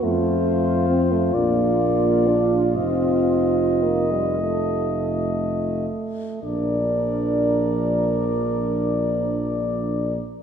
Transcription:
0.03 F2 A3 F4 C5
0.89 C4
1.12 A3
1.33 A#1 A#3 F4 D5
2.27 D4
2.76 F1 C4 D#5
3.83 A#3
4.11 G3
4.39 A3 A4
6.43 A#1 F3 D4 A#4 D5

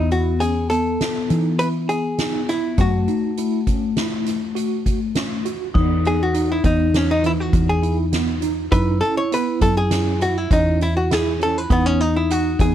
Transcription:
Already playing: E2 B3
0.11 E4 F#4, closed hi-hat
0.40 C#4 G#4, closed hi-hat
0.70 B3 A4, closed hi-hat
1.01 snare, closed hi-hat
1.30 E3 D#4, closed hi-hat
1.59 E4 B4, closed hi-hat
1.89 G#4, closed hi-hat
2.18 D#4, snare, closed hi-hat
2.49 E4, snare, closed hi-hat
2.78 F#2 A3 F#4, kick, closed hi-hat
3.08 D#4, closed hi-hat
3.37 E4, closed hi-hat
3.67 C#4, kick, closed hi-hat
3.97 E4, snare, closed hi-hat
4.26 snare, closed hi-hat
4.55 F#4, closed hi-hat
4.86 kick, closed hi-hat
5.15 C#4, snare, closed hi-hat
5.46 F#4, closed hi-hat
5.74 E2 B3 D#4, kick, crash
6.05 G#4, closed hi-hat
6.23 F#4
6.34 D#4, closed hi-hat
6.52 E4
6.64 E2 B3 D#4, kick, closed hi-hat
6.94 C#4 D#4, snare, closed hi-hat
7.11 D#4
7.23 E3 E4, closed hi-hat
7.40 F#4
7.53 E2, kick, closed hi-hat
7.69 G#4
7.83 E4, closed hi-hat
8.12 B3, snare, closed hi-hat
8.42 D#4, closed hi-hat
8.72 F#2 D#4 E4 B4, kick, closed hi-hat
9.01 C#4 A4, closed hi-hat
9.17 C#5
9.32 B3 B4, closed hi-hat
9.61 F#2 A4, kick, closed hi-hat
9.77 G#4
9.91 C#4, snare, closed hi-hat
10.20 E4 F#4, closed hi-hat
10.38 E4
10.50 E2 C#4 D#4, kick, closed hi-hat
10.81 E4, closed hi-hat
10.97 F#4
11.11 E4 G#4, snare, closed hi-hat
11.40 C#4 A4, closed hi-hat
11.58 B4
11.70 E2 B3 D#4, kick, closed hi-hat
11.86 C#4
12.01 D#4, closed hi-hat
12.16 E4
12.30 D#4 F#4, closed hi-hat
12.59 E2 B3 G#4, kick, closed hi-hat

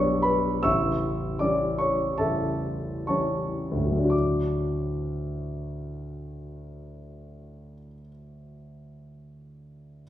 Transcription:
Already playing: B0 B1 G3 B3 D4 C#5 D5 B5 C#6 D6
0.22 B4 B5
0.63 A0 A1 E5 C#6 E6
1.39 E3 G3 C#4 D5 D6
1.78 C#5 C#6
2.18 A0 A1 A4 E5 A5
3.07 E3 G3 C#4 C#5 A5 C#6
3.71 D2
3.77 A2
3.85 F#3
3.91 A3
3.98 D4
4.04 F#4
4.10 D6

